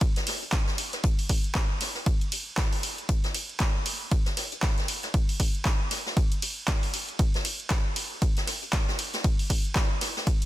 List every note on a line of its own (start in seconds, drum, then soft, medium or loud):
0.01 kick loud
0.01 closed hi-hat medium
0.01 ride medium
0.16 snare soft
0.16 closed hi-hat medium
0.27 snare soft
0.27 closed hi-hat medium
0.27 open hi-hat loud
0.27 ride medium
0.42 closed hi-hat soft
0.52 kick loud
0.52 snare loud
0.52 clap loud
0.52 closed hi-hat medium
0.52 ride medium
0.67 snare medium
0.78 closed hi-hat medium
0.78 open hi-hat loud
0.78 ride medium
0.93 snare medium
0.93 closed hi-hat medium
1.04 kick loud
1.04 closed hi-hat medium
1.04 closed hi-hat loud
1.04 ride medium
1.19 open hi-hat medium
1.29 kick medium
1.29 closed hi-hat medium
1.29 open hi-hat loud
1.29 ride medium
1.44 closed hi-hat soft
1.55 kick loud
1.55 snare loud
1.55 clap loud
1.55 closed hi-hat medium
1.55 closed hi-hat loud
1.55 ride medium
1.81 snare soft
1.81 closed hi-hat medium
1.81 open hi-hat loud
1.81 ride medium
1.95 snare soft
2.06 kick loud
2.06 closed hi-hat medium
2.06 ride medium
2.21 closed hi-hat medium
2.32 closed hi-hat medium
2.32 open hi-hat loud
2.32 ride medium
2.57 kick loud
2.57 snare loud
2.57 clap loud
2.57 closed hi-hat loud
2.57 closed hi-hat medium
2.57 ride medium
2.73 open hi-hat medium
2.83 closed hi-hat medium
2.83 open hi-hat loud
2.83 ride medium
2.98 closed hi-hat medium
3.09 kick loud
3.09 closed hi-hat medium
3.09 ride medium
3.24 snare medium
3.24 closed hi-hat soft
3.35 closed hi-hat medium
3.35 open hi-hat loud
3.35 ride medium
3.49 closed hi-hat soft
3.59 kick loud
3.59 snare loud
3.59 clap loud
3.59 closed hi-hat medium
3.59 ride medium
3.86 closed hi-hat medium
3.86 open hi-hat loud
3.86 ride medium
4.11 kick loud
4.11 closed hi-hat medium
4.11 ride medium
4.26 snare soft
4.26 closed hi-hat soft
4.37 snare soft
4.37 closed hi-hat medium
4.37 open hi-hat loud
4.37 ride medium
4.52 closed hi-hat soft
4.62 kick loud
4.62 snare loud
4.62 clap loud
4.62 closed hi-hat medium
4.62 ride medium
4.78 snare soft
4.78 closed hi-hat soft
4.88 closed hi-hat medium
4.88 open hi-hat loud
4.88 ride medium
5.03 snare soft
5.03 closed hi-hat medium
5.14 kick loud
5.14 closed hi-hat medium
5.14 ride medium
5.29 open hi-hat medium
5.40 kick medium
5.40 closed hi-hat medium
5.40 open hi-hat loud
5.40 ride medium
5.55 closed hi-hat soft
5.65 kick loud
5.65 snare loud
5.65 clap loud
5.65 closed hi-hat medium
5.65 closed hi-hat loud
5.65 ride medium
5.90 snare soft
5.90 closed hi-hat medium
5.90 open hi-hat loud
5.90 ride medium
6.06 snare soft
6.17 kick loud
6.17 closed hi-hat medium
6.17 ride medium
6.32 closed hi-hat medium
6.42 closed hi-hat medium
6.42 open hi-hat loud
6.42 ride medium
6.68 kick loud
6.68 snare loud
6.68 clap loud
6.68 closed hi-hat medium
6.68 ride medium
6.83 open hi-hat medium
6.94 closed hi-hat medium
6.94 open hi-hat loud
6.94 ride medium
7.09 closed hi-hat soft
7.19 kick loud
7.19 closed hi-hat medium
7.19 ride medium
7.34 snare medium
7.34 closed hi-hat soft
7.45 closed hi-hat medium
7.45 open hi-hat loud
7.45 ride medium
7.60 closed hi-hat soft
7.70 kick loud
7.70 snare loud
7.70 clap loud
7.70 closed hi-hat loud
7.70 closed hi-hat medium
7.70 ride medium
7.96 closed hi-hat medium
7.96 open hi-hat loud
7.96 ride medium
8.22 kick loud
8.22 closed hi-hat medium
8.22 ride medium
8.37 snare soft
8.37 closed hi-hat medium
8.47 snare soft
8.47 closed hi-hat medium
8.47 open hi-hat loud
8.47 ride medium
8.62 closed hi-hat soft
8.73 kick loud
8.73 snare loud
8.73 clap loud
8.73 closed hi-hat medium
8.73 closed hi-hat loud
8.73 ride medium
8.88 snare medium
8.98 closed hi-hat medium
8.98 open hi-hat loud
8.98 ride medium
9.14 snare soft
9.14 closed hi-hat medium
9.24 kick loud
9.24 closed hi-hat medium
9.24 ride medium
9.39 open hi-hat medium
9.50 kick medium
9.50 closed hi-hat medium
9.50 open hi-hat loud
9.50 ride medium
9.65 closed hi-hat soft
9.75 kick loud
9.75 snare loud
9.75 clap loud
9.75 closed hi-hat medium
9.75 ride medium
10.01 snare soft
10.01 closed hi-hat medium
10.01 open hi-hat loud
10.01 ride medium
10.17 snare soft
10.27 kick loud
10.27 closed hi-hat medium
10.27 ride medium
10.42 closed hi-hat medium